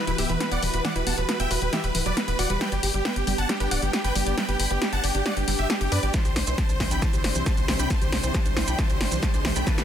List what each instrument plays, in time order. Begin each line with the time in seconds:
Already playing: analog synth pad E3 E4 F#4 G4 B4
0.07 analog synth bass E1, synth arpeggio sound E4, supersaw synth B4, closed hi-hat
0.18 analog synth bass D1, synth arpeggio sound B3, supersaw synth G4 E5, open hi-hat
0.29 analog synth bass E1, synth arpeggio sound E3, supersaw synth B4, closed hi-hat
0.40 synth arpeggio sound B3, supersaw synth B4, snare, closed hi-hat
0.52 analog synth bass E1, synth arpeggio sound B3, supersaw synth D5 F#5, closed hi-hat
0.63 analog synth bass E1, synth arpeggio sound E3, supersaw synth B4, open hi-hat
0.74 analog synth bass E1, synth arpeggio sound F#4, supersaw synth B4, closed hi-hat
0.85 synth arpeggio sound E3, supersaw synth D5 F#5, snare, closed hi-hat
0.96 analog synth bass E1, synth arpeggio sound E4, supersaw synth B4, closed hi-hat
1.07 analog synth bass E1, synth arpeggio sound B3, supersaw synth F#5 A5, open hi-hat
1.18 analog synth bass E1, synth arpeggio sound F#3, supersaw synth B4, closed hi-hat
1.29 synth arpeggio sound B3, supersaw synth B4, snare, closed hi-hat
1.40 analog synth bass E1, synth arpeggio sound B3, supersaw synth E5 G5, closed hi-hat
1.51 analog synth bass E1, synth arpeggio sound F#4, supersaw synth B4, open hi-hat
1.62 analog synth bass E1, synth arpeggio sound G3, supersaw synth B4, closed hi-hat
1.73 synth arpeggio sound E3, supersaw synth G4 E5, snare, closed hi-hat
1.84 analog synth bass E1, synth arpeggio sound G3, supersaw synth B4, closed hi-hat
1.95 analog synth bass D1, synth arpeggio sound E3, supersaw synth B4, open hi-hat
2.06 analog synth bass E1, synth arpeggio sound F#3, supersaw synth B4 D5, closed hi-hat
2.17 synth arpeggio sound B3, supersaw synth B4, snare, closed hi-hat
2.28 analog synth bass E1, synth arpeggio sound B3, supersaw synth B4, closed hi-hat
2.39 analog synth bass E1, synth arpeggio sound F#4, supersaw synth D5 F#5, open hi-hat
2.50 analog synth bass E1, synth arpeggio sound G3, supersaw synth B4, closed hi-hat
2.61 synth arpeggio sound G3, analog synth pad B3 D4, supersaw synth B4 G5, snare, closed hi-hat
2.72 analog synth bass G1, supersaw synth G4, synth arpeggio sound D5, closed hi-hat
2.83 analog synth bass G1, supersaw synth G4, synth arpeggio sound G4, open hi-hat
2.94 analog synth bass G1, synth arpeggio sound G3, supersaw synth G4, closed hi-hat
3.05 synth arpeggio sound B3, supersaw synth B4 G5, snare, closed hi-hat
3.16 analog synth bass G1, supersaw synth G4, synth arpeggio sound G4, closed hi-hat
3.27 analog synth bass G1, synth arpeggio sound G3, supersaw synth G4, open hi-hat
3.38 analog synth bass G1, synth arpeggio sound G4, supersaw synth F#5 A5, closed hi-hat
3.49 synth arpeggio sound G3, supersaw synth G4, snare, closed hi-hat
3.60 analog synth bass G1, supersaw synth G4, synth arpeggio sound B4, closed hi-hat
3.71 analog synth bass D1, synth arpeggio sound G4, supersaw synth D5 F#5, open hi-hat
3.82 analog synth bass G1, synth arpeggio sound G3, supersaw synth G4, closed hi-hat
3.93 supersaw synth G4, synth arpeggio sound G4, snare, closed hi-hat
4.04 analog synth bass G1, synth arpeggio sound G4, supersaw synth B4 G5, closed hi-hat
4.15 analog synth bass G1, synth arpeggio sound G3, supersaw synth G4, open hi-hat
4.26 analog synth bass G1, supersaw synth G4, synth arpeggio sound D5, closed hi-hat
4.38 synth arpeggio sound G3, supersaw synth B4 G5, snare, closed hi-hat
4.49 analog synth bass G1, supersaw synth G4, synth arpeggio sound B4, closed hi-hat
4.60 analog synth bass G1, synth arpeggio sound G4, supersaw synth G5 B5, open hi-hat
4.71 analog synth bass G1, synth arpeggio sound B3, supersaw synth G4, closed hi-hat
4.82 synth arpeggio sound G4, supersaw synth G4, snare, closed hi-hat
4.93 analog synth bass G1, synth arpeggio sound G4, supersaw synth F#5 A5, closed hi-hat
5.04 analog synth bass G1, supersaw synth G4, synth arpeggio sound D5, open hi-hat
5.15 analog synth bass G1, synth arpeggio sound D4, supersaw synth G4, closed hi-hat
5.26 synth arpeggio sound G3, supersaw synth D5 F#5, snare, closed hi-hat
5.37 analog synth bass G1, synth arpeggio sound D4, supersaw synth G4, closed hi-hat
5.48 analog synth bass G1, synth arpeggio sound G3, supersaw synth G4, open hi-hat
5.59 analog synth bass G1, synth arpeggio sound G4, supersaw synth G4 E5, closed hi-hat
5.70 synth arpeggio sound D4, supersaw synth G4, snare, closed hi-hat
5.81 analog synth bass G1, synth arpeggio sound G4, supersaw synth G4, closed hi-hat
5.92 analog synth bass G2, synth arpeggio sound D4, supersaw synth B4 D5, open hi-hat
6.03 analog synth bass A1, supersaw synth G4, synth arpeggio sound D5, closed hi-hat
6.14 analog synth pad C3 C4 D4 E4 G4, synth arpeggio sound E3, supersaw synth C5 A5, kick, snare, closed hi-hat, riser, shaker
6.25 analog synth bass C2, synth arpeggio sound G4, supersaw synth C5, closed hi-hat, shaker
6.36 analog synth bass C2, synth arpeggio sound D4, supersaw synth C5, snare, open hi-hat
6.47 analog synth bass C2, synth arpeggio sound E3, supersaw synth C5, closed hi-hat, shaker
6.58 synth arpeggio sound G3, supersaw synth C5 A5, kick, snare, closed hi-hat, shaker
6.69 analog synth bass C2, synth arpeggio sound D4, supersaw synth C5, closed hi-hat, shaker
6.80 analog synth bass C2, synth arpeggio sound E3, supersaw synth C5, kick, snare, open hi-hat
6.91 analog synth bass C2, synth arpeggio sound D4, supersaw synth G5 B5, closed hi-hat, shaker
7.02 synth arpeggio sound E3, supersaw synth C5 A5, kick, snare, closed hi-hat, shaker
7.13 analog synth bass C2, synth arpeggio sound G4, supersaw synth C5, closed hi-hat, shaker
7.24 analog synth bass G1, synth arpeggio sound D4, supersaw synth C5, snare, open hi-hat
7.35 analog synth bass C2, synth arpeggio sound E3, supersaw synth C5, closed hi-hat, shaker
7.46 synth arpeggio sound G3, supersaw synth C5 A5, kick, snare, closed hi-hat, shaker
7.57 analog synth bass C2, synth arpeggio sound D4, supersaw synth C5, closed hi-hat, shaker
7.68 analog synth bass C2, synth arpeggio sound E3, supersaw synth C5, snare, open hi-hat
7.79 analog synth bass C2, synth arpeggio sound D4, supersaw synth G5 B5, closed hi-hat, shaker
7.90 synth arpeggio sound E3, supersaw synth C5 A5, kick, snare, closed hi-hat, shaker
8.01 analog synth bass C2, synth arpeggio sound G4, supersaw synth C5, closed hi-hat, shaker
8.12 analog synth bass C2, synth arpeggio sound D4, supersaw synth C5, snare, open hi-hat
8.23 analog synth bass C2, synth arpeggio sound E3, supersaw synth C5, closed hi-hat, shaker
8.35 synth arpeggio sound G3, supersaw synth C5 A5, kick, snare, closed hi-hat, shaker
8.46 analog synth bass C2, synth arpeggio sound D4, supersaw synth C5, closed hi-hat, shaker
8.57 analog synth bass C2, synth arpeggio sound E3, supersaw synth C5, snare, open hi-hat
8.68 analog synth bass C2, synth arpeggio sound D4, supersaw synth G5 B5, closed hi-hat, shaker
8.79 synth arpeggio sound E3, supersaw synth C5 A5, kick, snare, closed hi-hat, shaker
8.90 analog synth bass C2, synth arpeggio sound G4, supersaw synth C5, closed hi-hat, shaker
9.01 analog synth bass G1, synth arpeggio sound D4, supersaw synth C5, snare, open hi-hat
9.12 analog synth bass C2, synth arpeggio sound E3, supersaw synth C5, closed hi-hat, shaker
9.23 synth arpeggio sound G3, supersaw synth C5 A5, kick, snare, closed hi-hat, shaker
9.34 analog synth bass C2, synth arpeggio sound D4, supersaw synth C5, closed hi-hat, shaker
9.45 analog synth bass C2, synth arpeggio sound E3, supersaw synth C5, snare, open hi-hat
9.56 analog synth bass C2, synth arpeggio sound D4, supersaw synth G5 B5, closed hi-hat, shaker
9.67 synth arpeggio sound E3, analog synth pad B3, supersaw synth B4 A5, kick, snare, closed hi-hat, shaker
9.78 analog synth bass G1, synth arpeggio sound G4, supersaw synth B4, snare, closed hi-hat, shaker